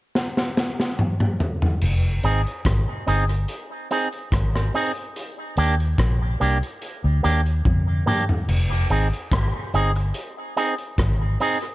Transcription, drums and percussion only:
0.15 snare medium
0.37 snare medium
0.57 snare medium
0.80 snare medium
0.99 mid tom medium
1.20 mid tom medium
1.40 floor tom medium
1.62 floor tom medium
1.81 crash medium
2.23 closed hi-hat medium
2.47 closed hi-hat soft
2.65 kick loud
2.65 cross-stick loud
2.65 closed hi-hat medium
3.08 closed hi-hat medium
3.29 closed hi-hat medium
3.48 closed hi-hat medium
3.91 closed hi-hat medium
4.12 closed hi-hat soft
4.32 kick loud
4.32 cross-stick medium
4.32 closed hi-hat medium
4.56 cross-stick medium
4.75 open hi-hat medium
4.97 closed hi-hat medium
5.16 closed hi-hat medium
5.57 closed hi-hat medium
5.80 closed hi-hat soft
5.98 kick loud
5.98 cross-stick loud
5.98 closed hi-hat medium
6.41 closed hi-hat medium
6.63 closed hi-hat medium
6.82 closed hi-hat medium
7.25 closed hi-hat medium
7.46 closed hi-hat soft
7.65 kick loud
7.65 high tom medium
8.07 mid tom medium
8.29 floor tom medium
8.49 crash medium
8.90 closed hi-hat medium
9.13 closed hi-hat soft
9.32 kick loud
9.32 cross-stick loud
9.32 closed hi-hat medium
9.74 closed hi-hat medium
9.95 closed hi-hat medium
10.14 closed hi-hat medium
10.57 closed hi-hat medium
10.78 closed hi-hat soft
10.98 kick loud
10.98 cross-stick medium
10.98 closed hi-hat medium
11.40 open hi-hat medium
11.62 closed hi-hat medium

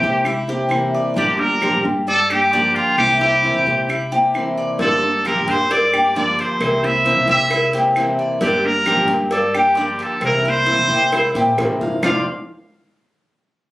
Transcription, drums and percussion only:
0.25 claves medium
0.71 claves medium
1.62 claves medium
2.30 claves medium
2.99 claves medium
3.90 claves medium
4.35 claves medium
4.79 cowbell loud
5.25 cowbell medium
5.25 claves medium
5.48 cowbell medium
5.71 cowbell loud
5.93 claves medium
6.16 cowbell medium
6.39 cowbell medium
6.61 cowbell loud
6.61 claves medium
7.06 cowbell medium
7.28 cowbell medium
7.51 cowbell loud
7.51 claves medium
7.73 cowbell medium
7.96 cowbell medium
7.96 claves medium
8.41 cowbell loud
8.86 cowbell medium
8.86 claves medium
9.08 cowbell medium
9.31 cowbell loud
9.54 claves medium
9.75 cowbell medium
9.99 cowbell medium
10.21 cowbell loud
10.21 claves medium
10.66 cowbell medium
10.90 cowbell medium
11.12 cowbell loud
11.12 claves medium
11.35 cowbell medium
11.58 cowbell medium
11.58 high bongo loud
11.58 claves medium
11.81 low bongo medium
12.03 low bongo loud
12.03 claves loud

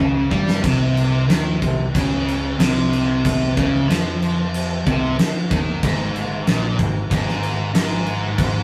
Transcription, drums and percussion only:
0.31 kick medium
0.48 snare medium
0.64 kick loud
0.64 crash medium
0.97 crash medium
1.30 snare loud
1.30 crash medium
1.62 kick medium
1.62 crash medium
1.95 kick loud
1.95 crash medium
2.28 crash medium
2.60 snare loud
2.60 crash medium
2.93 crash medium
3.25 kick loud
3.25 crash loud
3.57 kick loud
3.57 crash medium
3.90 snare loud
3.90 crash medium
4.22 crash medium
4.54 crash medium
4.87 kick loud
4.87 crash medium
5.19 snare loud
5.19 crash medium
5.51 kick loud
5.51 crash medium
5.83 kick loud
5.83 crash medium
6.16 crash medium
6.47 snare loud
6.47 crash medium
6.79 kick medium
6.79 crash medium
7.11 kick loud
7.11 crash medium
7.28 snare soft
7.43 crash medium
7.75 snare loud
7.75 crash medium
8.06 crash medium
8.38 kick loud
8.38 crash medium

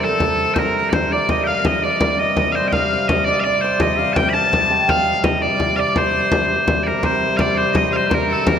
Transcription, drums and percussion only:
0.20 frame drum medium
0.56 frame drum loud
0.93 frame drum loud
1.29 frame drum medium
1.65 frame drum loud
2.01 frame drum loud
2.37 frame drum medium
2.73 frame drum medium
3.09 frame drum loud
3.80 frame drum loud
4.16 frame drum loud
4.53 frame drum medium
4.89 frame drum medium
5.24 frame drum loud
5.60 frame drum medium
5.96 frame drum medium
6.13 frame drum soft
6.32 frame drum loud
6.50 frame drum soft
6.68 frame drum loud
7.03 frame drum medium
7.21 frame drum soft
7.39 frame drum medium
7.75 frame drum medium
7.93 frame drum soft
8.11 frame drum loud
8.29 frame drum soft
8.47 frame drum loud

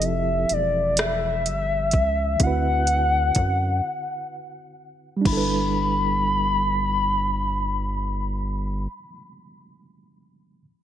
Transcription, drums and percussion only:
0.02 closed hi-hat soft
0.49 closed hi-hat soft
0.97 cross-stick loud
0.97 closed hi-hat medium
1.46 closed hi-hat soft
1.91 kick medium
1.91 closed hi-hat soft
2.40 kick medium
2.40 closed hi-hat medium
2.87 closed hi-hat soft
3.35 kick medium
3.35 closed hi-hat soft
5.25 kick medium
5.25 crash medium

